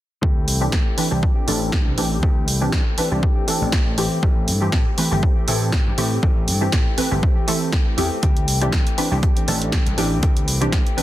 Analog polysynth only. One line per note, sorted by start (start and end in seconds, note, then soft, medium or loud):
0.61 0.80 E3 medium
0.61 0.80 C4 medium
0.61 0.80 D4 medium
0.61 0.80 G4 loud
0.97 1.08 E3 medium
0.97 1.08 C4 medium
0.97 1.08 D4 medium
0.97 1.08 B4 medium
1.11 1.45 E3 medium
1.11 1.45 C4 medium
1.11 1.45 D4 medium
1.11 1.45 G4 loud
1.47 1.95 E3 medium
1.47 1.95 C4 medium
1.47 1.95 D4 medium
1.47 1.95 A4 loud
1.98 2.18 E3 medium
1.98 2.18 C4 medium
1.98 2.18 D4 medium
1.98 2.18 G4 loud
2.61 2.80 E3 medium
2.61 2.80 C4 medium
2.61 2.80 D4 medium
2.61 2.81 G4 medium
2.98 3.08 E3 medium
2.98 3.08 C4 medium
2.98 3.08 D4 medium
2.98 3.09 B4 medium
3.11 3.45 E3 medium
3.11 3.45 C4 medium
3.11 3.45 D4 medium
3.11 3.45 G4 loud
3.47 3.95 E3 medium
3.47 3.95 C4 medium
3.47 3.95 D4 medium
3.47 3.95 A4 medium
3.98 4.18 E3 medium
3.98 4.18 A3 medium
3.98 4.18 C4 medium
3.98 4.18 G4 loud
4.61 4.80 E3 medium
4.61 4.80 A3 medium
4.61 4.81 C4 medium
4.61 4.81 G4 loud
4.98 5.08 E3 medium
4.98 5.08 A3 medium
4.98 5.08 C4 medium
4.98 5.09 B4 medium
5.11 5.45 E3 medium
5.11 5.45 A3 medium
5.11 5.45 C4 medium
5.11 5.45 G4 loud
5.48 5.95 E3 medium
5.48 5.95 A3 medium
5.48 5.95 C4 medium
5.48 5.95 A4 medium
5.98 6.18 E3 medium
5.98 6.18 A3 medium
5.98 6.18 C4 medium
5.98 6.18 G4 loud
6.61 6.80 E3 medium
6.61 6.80 A3 medium
6.61 6.80 C4 medium
6.61 6.81 G4 loud
6.97 7.08 E3 medium
6.97 7.08 A3 medium
6.97 7.08 C4 medium
6.97 7.08 B4 medium
7.11 7.45 E3 medium
7.11 7.45 A3 medium
7.11 7.45 C4 medium
7.11 7.45 G4 loud
7.48 7.95 E3 medium
7.48 7.95 A3 medium
7.48 7.95 C4 medium
7.48 7.95 A4 loud
7.97 8.18 E3 medium
7.97 8.18 A3 medium
7.97 8.18 C4 medium
7.97 8.18 G4 loud
8.61 8.80 E3 medium
8.61 8.80 C4 medium
8.61 8.81 D4 medium
8.61 8.81 G4 loud
8.98 9.08 E3 medium
8.98 9.08 C4 medium
8.98 9.08 D4 medium
8.98 9.09 B4 medium
9.11 9.45 E3 medium
9.11 9.45 C4 medium
9.11 9.45 D4 medium
9.11 9.45 G4 loud
9.48 9.95 E3 medium
9.48 9.95 C4 medium
9.48 9.95 D4 medium
9.48 9.95 A4 loud
9.97 10.18 E3 medium
9.97 10.18 C4 medium
9.97 10.18 D4 medium
9.97 10.18 G4 loud
10.61 10.80 E3 medium
10.61 10.80 C4 medium
10.61 10.80 D4 medium
10.61 10.80 G4 loud
10.97 11.03 E3 medium
10.97 11.03 C4 medium
10.97 11.03 D4 medium
10.97 11.03 B4 medium